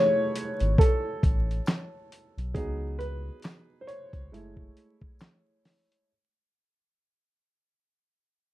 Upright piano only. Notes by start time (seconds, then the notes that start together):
Already playing: G#3 A3 E4 A4 B4 C#5
0.79 A4
2.54 F#3 B3 D#4 G#4
2.99 B4
3.81 C5
3.87 C#5
4.32 G#3 A3 E4